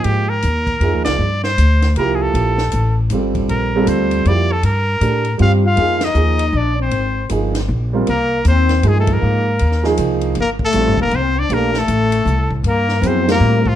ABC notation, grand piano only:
X:1
M:3/4
L:1/8
Q:"Swing" 1/4=157
K:Gphr
V:1 name="Grand piano"
[F,B,EA] z3 [F,B,EA]2 | z4 [F,B,=EG]2- | [F,B,=EG] z3 [G,CF=A]2- | [G,CF=A] [G,CFA]3 [F,B,=EG] z |
z2 [=A,DGB] z [G,CFG] z | [F,B,EA] z [F,B,EA] z3 | z2 [F,B,EA] z2 [G,CFB] | z4 [F,B,EA]2- |
[F,B,EA] z2 [F,B,EA]3 | z2 [G,CF=A] z3 | [=A,DGB] z4 z | z2 [_G,=B,=EA] [=G,CF_B]2 z |]